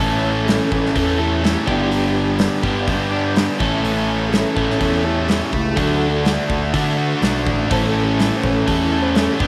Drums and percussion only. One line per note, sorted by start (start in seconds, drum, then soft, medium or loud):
0.48 snare loud
0.48 open hi-hat medium
0.72 kick medium
0.85 snare soft
0.96 kick medium
0.96 open hi-hat medium
1.44 snare loud
1.44 open hi-hat soft
1.68 kick medium
1.91 open hi-hat soft
2.39 snare loud
2.39 open hi-hat medium
2.63 kick medium
2.87 kick medium
2.87 open hi-hat medium
3.36 snare loud
3.36 open hi-hat medium
3.60 kick loud
3.84 open hi-hat medium
4.32 snare loud
4.32 open hi-hat medium
4.57 kick medium
4.70 snare soft
4.80 kick medium
4.80 open hi-hat medium
5.28 snare loud
5.28 open hi-hat medium
5.53 kick medium
5.76 kick loud
5.76 open hi-hat medium
6.25 snare loud
6.25 open hi-hat medium
6.50 kick medium
6.74 kick medium
6.74 open hi-hat medium
7.22 snare loud
7.22 open hi-hat medium
7.47 kick medium
7.71 kick loud
7.71 open hi-hat medium
8.19 snare loud
8.19 open hi-hat medium
8.43 kick medium
8.68 kick medium
8.68 open hi-hat medium
9.15 snare loud
9.15 open hi-hat medium
9.40 kick loud